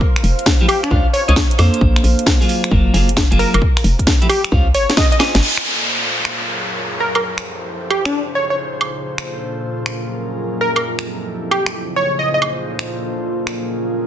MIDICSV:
0, 0, Header, 1, 8, 480
1, 0, Start_track
1, 0, Tempo, 451128
1, 12, Time_signature, 4, 2, 24, 8
1, 14969, End_track
2, 0, Start_track
2, 0, Title_t, "Digital synth lead"
2, 0, Program_c, 0, 84
2, 728, Note_on_c, 0, 67, 92
2, 857, Note_off_c, 0, 67, 0
2, 886, Note_on_c, 0, 62, 88
2, 1033, Note_off_c, 0, 62, 0
2, 1207, Note_on_c, 0, 73, 85
2, 1311, Note_off_c, 0, 73, 0
2, 1367, Note_on_c, 0, 73, 78
2, 1421, Note_off_c, 0, 73, 0
2, 3610, Note_on_c, 0, 70, 88
2, 3712, Note_off_c, 0, 70, 0
2, 3768, Note_on_c, 0, 70, 75
2, 3821, Note_off_c, 0, 70, 0
2, 4569, Note_on_c, 0, 67, 92
2, 4697, Note_off_c, 0, 67, 0
2, 5049, Note_on_c, 0, 73, 95
2, 5267, Note_off_c, 0, 73, 0
2, 5290, Note_on_c, 0, 75, 91
2, 5393, Note_off_c, 0, 75, 0
2, 5447, Note_on_c, 0, 75, 75
2, 5500, Note_off_c, 0, 75, 0
2, 7452, Note_on_c, 0, 70, 85
2, 7554, Note_off_c, 0, 70, 0
2, 7613, Note_on_c, 0, 70, 72
2, 7664, Note_off_c, 0, 70, 0
2, 8411, Note_on_c, 0, 67, 84
2, 8538, Note_off_c, 0, 67, 0
2, 8572, Note_on_c, 0, 62, 84
2, 8716, Note_off_c, 0, 62, 0
2, 8887, Note_on_c, 0, 73, 85
2, 8991, Note_off_c, 0, 73, 0
2, 9047, Note_on_c, 0, 73, 72
2, 9101, Note_off_c, 0, 73, 0
2, 11289, Note_on_c, 0, 70, 83
2, 11392, Note_off_c, 0, 70, 0
2, 11446, Note_on_c, 0, 70, 71
2, 11500, Note_off_c, 0, 70, 0
2, 12248, Note_on_c, 0, 67, 82
2, 12377, Note_off_c, 0, 67, 0
2, 12729, Note_on_c, 0, 73, 90
2, 12947, Note_off_c, 0, 73, 0
2, 12970, Note_on_c, 0, 75, 81
2, 13073, Note_off_c, 0, 75, 0
2, 13132, Note_on_c, 0, 75, 75
2, 13183, Note_off_c, 0, 75, 0
2, 14969, End_track
3, 0, Start_track
3, 0, Title_t, "Ambient pad"
3, 0, Program_c, 1, 92
3, 0, Note_on_c, 1, 72, 70
3, 0, Note_on_c, 1, 77, 83
3, 2817, Note_on_c, 1, 82, 73
3, 3849, Note_off_c, 1, 82, 0
3, 5774, Note_on_c, 1, 58, 66
3, 6074, Note_off_c, 1, 72, 0
3, 6075, Note_off_c, 1, 77, 0
3, 6489, Note_on_c, 1, 54, 77
3, 6697, Note_on_c, 1, 68, 65
3, 6973, Note_off_c, 1, 58, 0
3, 7690, Note_off_c, 1, 54, 0
3, 7691, Note_off_c, 1, 68, 0
3, 7822, Note_on_c, 1, 79, 67
3, 8799, Note_on_c, 1, 65, 81
3, 8880, Note_on_c, 1, 58, 80
3, 9066, Note_off_c, 1, 79, 0
3, 10331, Note_on_c, 1, 54, 66
3, 10524, Note_on_c, 1, 75, 66
3, 11529, Note_off_c, 1, 65, 0
3, 11530, Note_off_c, 1, 75, 0
3, 11531, Note_off_c, 1, 54, 0
3, 11531, Note_off_c, 1, 58, 0
3, 12598, Note_on_c, 1, 58, 70
3, 12721, Note_on_c, 1, 65, 75
3, 14169, Note_on_c, 1, 54, 69
3, 14969, Note_off_c, 1, 54, 0
3, 14969, Note_off_c, 1, 58, 0
3, 14969, Note_off_c, 1, 65, 0
3, 14969, End_track
4, 0, Start_track
4, 0, Title_t, "Analog synth pad"
4, 0, Program_c, 2, 89
4, 5770, Note_on_c, 2, 58, 70
4, 5770, Note_on_c, 2, 65, 71
4, 5771, Note_on_c, 2, 69, 66
4, 5771, Note_on_c, 2, 72, 65
4, 5771, Note_on_c, 2, 74, 78
4, 6484, Note_off_c, 2, 58, 0
4, 6484, Note_off_c, 2, 69, 0
4, 6484, Note_off_c, 2, 72, 0
4, 6484, Note_off_c, 2, 74, 0
4, 6490, Note_on_c, 2, 54, 72
4, 6490, Note_on_c, 2, 70, 69
4, 6490, Note_on_c, 2, 73, 82
4, 6491, Note_on_c, 2, 68, 68
4, 7672, Note_off_c, 2, 65, 0
4, 7679, Note_off_c, 2, 54, 0
4, 7679, Note_off_c, 2, 68, 0
4, 7679, Note_off_c, 2, 70, 0
4, 7679, Note_off_c, 2, 73, 0
4, 7691, Note_on_c, 2, 64, 67
4, 7691, Note_on_c, 2, 69, 67
4, 7692, Note_on_c, 2, 53, 72
4, 7692, Note_on_c, 2, 72, 81
4, 7693, Note_on_c, 2, 67, 67
4, 8639, Note_off_c, 2, 72, 0
4, 8642, Note_off_c, 2, 53, 0
4, 8642, Note_off_c, 2, 64, 0
4, 8642, Note_off_c, 2, 67, 0
4, 8642, Note_off_c, 2, 69, 0
4, 8652, Note_on_c, 2, 49, 71
4, 8652, Note_on_c, 2, 63, 67
4, 8652, Note_on_c, 2, 65, 65
4, 8652, Note_on_c, 2, 68, 65
4, 8652, Note_on_c, 2, 72, 79
4, 9599, Note_off_c, 2, 72, 0
4, 9600, Note_off_c, 2, 65, 0
4, 9602, Note_off_c, 2, 49, 0
4, 9602, Note_off_c, 2, 63, 0
4, 9602, Note_off_c, 2, 68, 0
4, 9611, Note_on_c, 2, 46, 73
4, 9612, Note_on_c, 2, 65, 71
4, 9612, Note_on_c, 2, 69, 66
4, 9612, Note_on_c, 2, 72, 80
4, 9613, Note_on_c, 2, 62, 67
4, 10324, Note_off_c, 2, 46, 0
4, 10325, Note_off_c, 2, 62, 0
4, 10325, Note_off_c, 2, 69, 0
4, 10325, Note_off_c, 2, 72, 0
4, 10333, Note_on_c, 2, 61, 69
4, 10334, Note_on_c, 2, 54, 76
4, 10334, Note_on_c, 2, 68, 67
4, 10334, Note_on_c, 2, 70, 83
4, 11513, Note_off_c, 2, 65, 0
4, 11520, Note_off_c, 2, 61, 0
4, 11521, Note_off_c, 2, 54, 0
4, 11521, Note_off_c, 2, 68, 0
4, 11521, Note_off_c, 2, 70, 0
4, 11530, Note_on_c, 2, 64, 67
4, 11530, Note_on_c, 2, 69, 82
4, 11531, Note_on_c, 2, 60, 68
4, 11531, Note_on_c, 2, 67, 66
4, 11532, Note_on_c, 2, 53, 73
4, 12481, Note_off_c, 2, 64, 0
4, 12481, Note_off_c, 2, 69, 0
4, 12482, Note_off_c, 2, 53, 0
4, 12482, Note_off_c, 2, 60, 0
4, 12482, Note_off_c, 2, 67, 0
4, 12488, Note_on_c, 2, 68, 68
4, 12489, Note_on_c, 2, 65, 71
4, 12489, Note_on_c, 2, 72, 83
4, 12490, Note_on_c, 2, 63, 68
4, 12491, Note_on_c, 2, 49, 72
4, 13440, Note_off_c, 2, 68, 0
4, 13441, Note_off_c, 2, 49, 0
4, 13441, Note_off_c, 2, 63, 0
4, 13451, Note_on_c, 2, 46, 71
4, 13451, Note_on_c, 2, 62, 66
4, 13452, Note_on_c, 2, 69, 66
4, 14153, Note_off_c, 2, 72, 0
4, 14164, Note_off_c, 2, 46, 0
4, 14164, Note_off_c, 2, 62, 0
4, 14165, Note_off_c, 2, 69, 0
4, 14171, Note_on_c, 2, 54, 72
4, 14172, Note_on_c, 2, 61, 68
4, 14172, Note_on_c, 2, 68, 69
4, 14172, Note_on_c, 2, 70, 83
4, 14969, Note_off_c, 2, 54, 0
4, 14969, Note_off_c, 2, 61, 0
4, 14969, Note_off_c, 2, 65, 0
4, 14969, Note_off_c, 2, 68, 0
4, 14969, Note_off_c, 2, 70, 0
4, 14969, End_track
5, 0, Start_track
5, 0, Title_t, "Clean electric guitar"
5, 0, Program_c, 3, 27
5, 645, Note_on_c, 3, 67, 94
5, 650, Note_on_c, 3, 64, 76
5, 655, Note_on_c, 3, 57, 68
5, 658, Note_on_c, 3, 53, 76
5, 699, Note_off_c, 3, 57, 0
5, 699, Note_off_c, 3, 67, 0
5, 700, Note_off_c, 3, 53, 0
5, 700, Note_off_c, 3, 64, 0
5, 965, Note_on_c, 3, 61, 85
5, 969, Note_on_c, 3, 65, 77
5, 974, Note_on_c, 3, 72, 70
5, 978, Note_on_c, 3, 77, 82
5, 1126, Note_off_c, 3, 61, 0
5, 1126, Note_off_c, 3, 65, 0
5, 1126, Note_off_c, 3, 72, 0
5, 1126, Note_off_c, 3, 77, 0
5, 1365, Note_on_c, 3, 75, 103
5, 1369, Note_on_c, 3, 72, 80
5, 1373, Note_on_c, 3, 65, 81
5, 1378, Note_on_c, 3, 61, 83
5, 1419, Note_off_c, 3, 61, 0
5, 1419, Note_off_c, 3, 65, 0
5, 1419, Note_off_c, 3, 72, 0
5, 1419, Note_off_c, 3, 75, 0
5, 1685, Note_on_c, 3, 72, 97
5, 1690, Note_on_c, 3, 69, 85
5, 1694, Note_on_c, 3, 62, 73
5, 1699, Note_on_c, 3, 58, 84
5, 2531, Note_off_c, 3, 58, 0
5, 2531, Note_off_c, 3, 62, 0
5, 2531, Note_off_c, 3, 69, 0
5, 2531, Note_off_c, 3, 72, 0
5, 2564, Note_on_c, 3, 68, 81
5, 2569, Note_on_c, 3, 65, 66
5, 2574, Note_on_c, 3, 58, 60
5, 2578, Note_on_c, 3, 54, 67
5, 2871, Note_off_c, 3, 54, 0
5, 2871, Note_off_c, 3, 58, 0
5, 2871, Note_off_c, 3, 65, 0
5, 2871, Note_off_c, 3, 68, 0
5, 2885, Note_on_c, 3, 54, 76
5, 2889, Note_on_c, 3, 58, 71
5, 2893, Note_on_c, 3, 65, 65
5, 2898, Note_on_c, 3, 70, 75
5, 3111, Note_off_c, 3, 54, 0
5, 3111, Note_off_c, 3, 58, 0
5, 3111, Note_off_c, 3, 65, 0
5, 3111, Note_off_c, 3, 70, 0
5, 3125, Note_on_c, 3, 68, 89
5, 3131, Note_on_c, 3, 65, 66
5, 3136, Note_on_c, 3, 58, 69
5, 3139, Note_on_c, 3, 54, 69
5, 3287, Note_off_c, 3, 54, 0
5, 3287, Note_off_c, 3, 58, 0
5, 3287, Note_off_c, 3, 65, 0
5, 3287, Note_off_c, 3, 68, 0
5, 3522, Note_on_c, 3, 68, 103
5, 3528, Note_on_c, 3, 65, 71
5, 3532, Note_on_c, 3, 58, 70
5, 3536, Note_on_c, 3, 54, 77
5, 3840, Note_off_c, 3, 54, 0
5, 3840, Note_off_c, 3, 58, 0
5, 3840, Note_off_c, 3, 65, 0
5, 3840, Note_off_c, 3, 68, 0
5, 4485, Note_on_c, 3, 64, 70
5, 4488, Note_on_c, 3, 67, 88
5, 4493, Note_on_c, 3, 57, 62
5, 4497, Note_on_c, 3, 53, 75
5, 4539, Note_off_c, 3, 53, 0
5, 4539, Note_off_c, 3, 57, 0
5, 4539, Note_off_c, 3, 64, 0
5, 4539, Note_off_c, 3, 67, 0
5, 4807, Note_on_c, 3, 61, 82
5, 4811, Note_on_c, 3, 65, 76
5, 4816, Note_on_c, 3, 72, 70
5, 4820, Note_on_c, 3, 77, 79
5, 4967, Note_off_c, 3, 61, 0
5, 4967, Note_off_c, 3, 65, 0
5, 4967, Note_off_c, 3, 72, 0
5, 4967, Note_off_c, 3, 77, 0
5, 5526, Note_on_c, 3, 80, 98
5, 5531, Note_on_c, 3, 72, 74
5, 5535, Note_on_c, 3, 65, 80
5, 5539, Note_on_c, 3, 61, 70
5, 5687, Note_off_c, 3, 61, 0
5, 5687, Note_off_c, 3, 65, 0
5, 5687, Note_off_c, 3, 72, 0
5, 5687, Note_off_c, 3, 80, 0
5, 14969, End_track
6, 0, Start_track
6, 0, Title_t, "FM bass"
6, 0, Program_c, 4, 39
6, 251, Note_on_c, 4, 29, 87
6, 368, Note_off_c, 4, 29, 0
6, 970, Note_on_c, 4, 37, 105
6, 1087, Note_off_c, 4, 37, 0
6, 1369, Note_on_c, 4, 37, 85
6, 1429, Note_off_c, 4, 37, 0
6, 1690, Note_on_c, 4, 41, 93
6, 1808, Note_off_c, 4, 41, 0
6, 1929, Note_on_c, 4, 34, 97
6, 2127, Note_off_c, 4, 34, 0
6, 2170, Note_on_c, 4, 34, 89
6, 2287, Note_off_c, 4, 34, 0
6, 2888, Note_on_c, 4, 30, 97
6, 3087, Note_off_c, 4, 30, 0
6, 3129, Note_on_c, 4, 30, 101
6, 3462, Note_off_c, 4, 30, 0
6, 3528, Note_on_c, 4, 30, 86
6, 3685, Note_off_c, 4, 30, 0
6, 3767, Note_on_c, 4, 30, 82
6, 3828, Note_off_c, 4, 30, 0
6, 4088, Note_on_c, 4, 29, 90
6, 4207, Note_off_c, 4, 29, 0
6, 4810, Note_on_c, 4, 37, 107
6, 5050, Note_on_c, 4, 32, 96
6, 5066, Note_off_c, 4, 37, 0
6, 5168, Note_off_c, 4, 32, 0
6, 5690, Note_on_c, 4, 32, 98
6, 5750, Note_off_c, 4, 32, 0
6, 14969, End_track
7, 0, Start_track
7, 0, Title_t, "Downlifter"
7, 0, Program_c, 5, 103
7, 5771, Note_on_c, 5, 60, 61
7, 9611, Note_off_c, 5, 60, 0
7, 14969, End_track
8, 0, Start_track
8, 0, Title_t, "Drums"
8, 10, Note_on_c, 9, 36, 113
8, 117, Note_off_c, 9, 36, 0
8, 173, Note_on_c, 9, 26, 61
8, 254, Note_on_c, 9, 46, 99
8, 280, Note_off_c, 9, 26, 0
8, 360, Note_off_c, 9, 46, 0
8, 414, Note_on_c, 9, 42, 68
8, 490, Note_on_c, 9, 36, 115
8, 492, Note_on_c, 9, 38, 113
8, 520, Note_off_c, 9, 42, 0
8, 596, Note_off_c, 9, 36, 0
8, 598, Note_off_c, 9, 38, 0
8, 732, Note_on_c, 9, 46, 106
8, 732, Note_on_c, 9, 76, 81
8, 838, Note_off_c, 9, 46, 0
8, 838, Note_off_c, 9, 76, 0
8, 892, Note_on_c, 9, 26, 62
8, 892, Note_on_c, 9, 42, 67
8, 970, Note_on_c, 9, 36, 113
8, 998, Note_off_c, 9, 26, 0
8, 998, Note_off_c, 9, 42, 0
8, 1076, Note_off_c, 9, 36, 0
8, 1211, Note_on_c, 9, 46, 102
8, 1317, Note_off_c, 9, 46, 0
8, 1369, Note_on_c, 9, 42, 68
8, 1449, Note_on_c, 9, 36, 113
8, 1450, Note_on_c, 9, 38, 113
8, 1476, Note_off_c, 9, 42, 0
8, 1556, Note_off_c, 9, 36, 0
8, 1557, Note_off_c, 9, 38, 0
8, 1609, Note_on_c, 9, 42, 53
8, 1689, Note_on_c, 9, 46, 99
8, 1689, Note_on_c, 9, 76, 75
8, 1715, Note_off_c, 9, 42, 0
8, 1796, Note_off_c, 9, 46, 0
8, 1796, Note_off_c, 9, 76, 0
8, 1849, Note_on_c, 9, 42, 66
8, 1929, Note_on_c, 9, 36, 115
8, 1955, Note_off_c, 9, 42, 0
8, 2036, Note_off_c, 9, 36, 0
8, 2089, Note_on_c, 9, 26, 64
8, 2172, Note_on_c, 9, 46, 106
8, 2196, Note_off_c, 9, 26, 0
8, 2278, Note_off_c, 9, 46, 0
8, 2330, Note_on_c, 9, 42, 70
8, 2409, Note_on_c, 9, 36, 111
8, 2412, Note_on_c, 9, 38, 113
8, 2436, Note_off_c, 9, 42, 0
8, 2515, Note_off_c, 9, 36, 0
8, 2518, Note_off_c, 9, 38, 0
8, 2573, Note_on_c, 9, 46, 57
8, 2651, Note_off_c, 9, 46, 0
8, 2651, Note_on_c, 9, 46, 108
8, 2758, Note_off_c, 9, 46, 0
8, 2809, Note_on_c, 9, 26, 65
8, 2809, Note_on_c, 9, 42, 68
8, 2889, Note_on_c, 9, 36, 110
8, 2916, Note_off_c, 9, 26, 0
8, 2916, Note_off_c, 9, 42, 0
8, 2995, Note_off_c, 9, 36, 0
8, 3132, Note_on_c, 9, 46, 108
8, 3238, Note_off_c, 9, 46, 0
8, 3290, Note_on_c, 9, 42, 68
8, 3369, Note_on_c, 9, 36, 112
8, 3371, Note_on_c, 9, 38, 114
8, 3396, Note_off_c, 9, 42, 0
8, 3475, Note_off_c, 9, 36, 0
8, 3477, Note_off_c, 9, 38, 0
8, 3530, Note_on_c, 9, 42, 55
8, 3611, Note_on_c, 9, 46, 105
8, 3636, Note_off_c, 9, 42, 0
8, 3717, Note_off_c, 9, 46, 0
8, 3770, Note_on_c, 9, 42, 70
8, 3770, Note_on_c, 9, 76, 74
8, 3849, Note_on_c, 9, 36, 115
8, 3877, Note_off_c, 9, 42, 0
8, 3877, Note_off_c, 9, 76, 0
8, 3955, Note_off_c, 9, 36, 0
8, 4010, Note_on_c, 9, 26, 68
8, 4010, Note_on_c, 9, 46, 62
8, 4090, Note_off_c, 9, 46, 0
8, 4090, Note_on_c, 9, 46, 109
8, 4117, Note_off_c, 9, 26, 0
8, 4196, Note_off_c, 9, 46, 0
8, 4248, Note_on_c, 9, 36, 58
8, 4250, Note_on_c, 9, 42, 68
8, 4329, Note_off_c, 9, 36, 0
8, 4329, Note_on_c, 9, 36, 115
8, 4330, Note_on_c, 9, 38, 110
8, 4357, Note_off_c, 9, 42, 0
8, 4435, Note_off_c, 9, 36, 0
8, 4437, Note_off_c, 9, 38, 0
8, 4489, Note_on_c, 9, 42, 35
8, 4570, Note_on_c, 9, 46, 113
8, 4570, Note_on_c, 9, 76, 73
8, 4595, Note_off_c, 9, 42, 0
8, 4677, Note_off_c, 9, 46, 0
8, 4677, Note_off_c, 9, 76, 0
8, 4729, Note_on_c, 9, 26, 68
8, 4729, Note_on_c, 9, 42, 68
8, 4809, Note_on_c, 9, 36, 110
8, 4835, Note_off_c, 9, 26, 0
8, 4835, Note_off_c, 9, 42, 0
8, 4916, Note_off_c, 9, 36, 0
8, 5049, Note_on_c, 9, 46, 110
8, 5155, Note_off_c, 9, 46, 0
8, 5209, Note_on_c, 9, 38, 60
8, 5209, Note_on_c, 9, 42, 67
8, 5290, Note_off_c, 9, 38, 0
8, 5290, Note_on_c, 9, 36, 114
8, 5290, Note_on_c, 9, 38, 113
8, 5316, Note_off_c, 9, 42, 0
8, 5396, Note_off_c, 9, 36, 0
8, 5396, Note_off_c, 9, 38, 0
8, 5450, Note_on_c, 9, 42, 55
8, 5532, Note_on_c, 9, 38, 60
8, 5532, Note_on_c, 9, 46, 106
8, 5532, Note_on_c, 9, 76, 75
8, 5556, Note_off_c, 9, 42, 0
8, 5638, Note_off_c, 9, 38, 0
8, 5638, Note_off_c, 9, 46, 0
8, 5638, Note_off_c, 9, 76, 0
8, 5692, Note_on_c, 9, 38, 73
8, 5692, Note_on_c, 9, 42, 68
8, 5772, Note_on_c, 9, 49, 73
8, 5798, Note_off_c, 9, 38, 0
8, 5798, Note_off_c, 9, 42, 0
8, 5878, Note_off_c, 9, 49, 0
8, 5932, Note_on_c, 9, 26, 61
8, 6038, Note_off_c, 9, 26, 0
8, 6651, Note_on_c, 9, 26, 63
8, 6757, Note_off_c, 9, 26, 0
8, 7610, Note_on_c, 9, 76, 65
8, 7716, Note_off_c, 9, 76, 0
8, 7850, Note_on_c, 9, 26, 63
8, 7956, Note_off_c, 9, 26, 0
8, 8411, Note_on_c, 9, 76, 68
8, 8518, Note_off_c, 9, 76, 0
8, 8570, Note_on_c, 9, 26, 64
8, 8676, Note_off_c, 9, 26, 0
8, 9372, Note_on_c, 9, 76, 70
8, 9479, Note_off_c, 9, 76, 0
8, 9770, Note_on_c, 9, 26, 61
8, 9876, Note_off_c, 9, 26, 0
8, 10491, Note_on_c, 9, 26, 61
8, 10597, Note_off_c, 9, 26, 0
8, 11451, Note_on_c, 9, 76, 72
8, 11557, Note_off_c, 9, 76, 0
8, 11691, Note_on_c, 9, 26, 57
8, 11798, Note_off_c, 9, 26, 0
8, 12252, Note_on_c, 9, 76, 75
8, 12358, Note_off_c, 9, 76, 0
8, 12411, Note_on_c, 9, 26, 58
8, 12517, Note_off_c, 9, 26, 0
8, 13214, Note_on_c, 9, 76, 73
8, 13320, Note_off_c, 9, 76, 0
8, 13610, Note_on_c, 9, 26, 56
8, 13717, Note_off_c, 9, 26, 0
8, 14331, Note_on_c, 9, 26, 59
8, 14438, Note_off_c, 9, 26, 0
8, 14969, End_track
0, 0, End_of_file